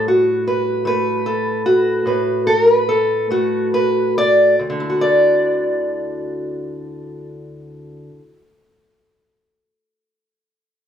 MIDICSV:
0, 0, Header, 1, 2, 480
1, 0, Start_track
1, 0, Key_signature, 2, "major"
1, 0, Tempo, 795756
1, 1241, Tempo, 834492
1, 2201, Tempo, 879765
1, 2676, Time_signature, 12, 3, 24, 8
1, 6103, End_track
2, 0, Start_track
2, 0, Title_t, "Steel-string acoustic guitar"
2, 0, Program_c, 0, 25
2, 0, Note_on_c, 0, 45, 69
2, 0, Note_on_c, 0, 55, 53
2, 49, Note_on_c, 0, 66, 78
2, 287, Note_on_c, 0, 71, 84
2, 513, Note_on_c, 0, 57, 63
2, 518, Note_off_c, 0, 71, 0
2, 526, Note_on_c, 0, 71, 101
2, 758, Note_off_c, 0, 66, 0
2, 760, Note_on_c, 0, 69, 79
2, 998, Note_off_c, 0, 69, 0
2, 1000, Note_on_c, 0, 66, 87
2, 1234, Note_off_c, 0, 45, 0
2, 1241, Note_off_c, 0, 71, 0
2, 1241, Note_on_c, 0, 45, 67
2, 1247, Note_on_c, 0, 71, 73
2, 1470, Note_off_c, 0, 71, 0
2, 1477, Note_on_c, 0, 70, 89
2, 1633, Note_off_c, 0, 70, 0
2, 1633, Note_on_c, 0, 71, 89
2, 1716, Note_off_c, 0, 66, 0
2, 1718, Note_on_c, 0, 69, 81
2, 1952, Note_off_c, 0, 57, 0
2, 1959, Note_off_c, 0, 69, 0
2, 1959, Note_on_c, 0, 57, 64
2, 1964, Note_on_c, 0, 66, 85
2, 2202, Note_off_c, 0, 71, 0
2, 2209, Note_on_c, 0, 71, 91
2, 2441, Note_off_c, 0, 71, 0
2, 2448, Note_on_c, 0, 74, 113
2, 2648, Note_off_c, 0, 57, 0
2, 2674, Note_on_c, 0, 38, 61
2, 2675, Note_off_c, 0, 45, 0
2, 2675, Note_off_c, 0, 55, 0
2, 2679, Note_off_c, 0, 66, 0
2, 2681, Note_off_c, 0, 74, 0
2, 2731, Note_on_c, 0, 50, 62
2, 2787, Note_on_c, 0, 64, 55
2, 2839, Note_on_c, 0, 66, 59
2, 2903, Note_on_c, 0, 74, 100
2, 4584, Note_off_c, 0, 38, 0
2, 4612, Note_off_c, 0, 74, 0
2, 4640, Note_off_c, 0, 50, 0
2, 4697, Note_off_c, 0, 64, 0
2, 4749, Note_off_c, 0, 66, 0
2, 6103, End_track
0, 0, End_of_file